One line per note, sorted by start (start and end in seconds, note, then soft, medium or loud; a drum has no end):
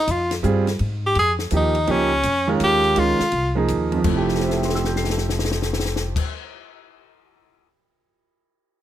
0.00 0.13 D#4 medium
0.08 0.43 F2 medium
0.08 0.33 F4 medium
0.08 hi-hat pedal medium
0.08 ride medium
0.31 snare medium
0.31 ride medium
0.43 0.79 G2 medium
0.43 0.65 G3 medium
0.43 0.65 C4 medium
0.43 0.65 F4 medium
0.43 0.65 G#4 medium
0.43 hi-hat pedal soft
0.67 snare soft
0.67 ride soft
0.79 1.15 G#2 medium
0.79 ride soft
1.07 1.17 G4 medium
1.15 1.51 F2 medium
1.15 ride medium
1.19 1.33 G#4 medium
1.39 snare soft
1.51 1.87 D#2 medium
1.51 1.73 F3 medium
1.51 1.73 A#3 soft
1.51 1.74 D#4 soft
1.51 1.74 G4 medium
1.51 hi-hat pedal soft
1.51 ride medium
1.57 1.93 D#4 medium
1.75 ride soft
1.87 2.23 C#2 medium
1.87 2.09 F3 medium
1.87 2.09 A#3 soft
1.87 2.10 D#4 medium
1.87 2.10 G4 medium
1.87 ride soft
1.91 2.50 C#4 medium
2.23 2.59 F2 medium
2.23 hi-hat pedal medium
2.23 ride medium
2.47 2.94 D#3 medium
2.47 2.94 G#3 medium
2.47 2.94 C#4 medium
2.47 2.94 F4 medium
2.60 2.95 D#2 medium
2.60 hi-hat pedal medium
2.60 ride medium
2.64 3.01 G4 loud
2.84 ride soft
2.96 3.19 C#2 medium
2.96 3.17 D#3 medium
2.96 3.18 G#3 soft
2.96 3.18 C#4 soft
2.96 3.18 F4 medium
2.96 3.58 F4 medium
2.96 ride medium
3.20 muted upright bass stroke soft
3.20 snare soft
3.32 3.68 C2 medium
3.32 ride medium
3.55 3.96 F3 medium
3.55 4.02 A#3 medium
3.55 4.03 D#4 medium
3.55 4.03 G#4 medium
3.68 4.04 D#2 medium
3.68 hi-hat pedal medium
3.68 ride medium
3.92 6.14 F2 medium
3.92 ride soft
3.98 6.17 F3 medium
4.04 6.16 F1 medium
4.04 6.20 A3 medium
4.04 kick medium
4.04 crash medium
4.10 6.23 E4 soft
4.17 6.27 G4 medium
4.28 snare soft
4.35 snare soft
4.40 6.16 C5 soft
4.40 snare soft
4.48 6.20 E5 soft
4.48 snare soft
4.56 6.24 G5 soft
4.62 6.28 C6 soft
4.62 snare soft
4.69 snare soft
4.75 6.34 E6 soft
4.75 snare soft
4.85 6.39 G6 soft
4.85 snare medium
4.96 6.45 C7 soft
4.96 snare medium
5.04 snare soft
5.10 snare medium
5.18 snare medium
5.29 snare medium
5.39 snare medium
5.45 snare medium
5.51 snare medium
5.62 snare medium
5.73 snare medium
5.79 snare medium
5.85 snare medium
5.96 snare medium
6.16 kick loud
6.16 crash medium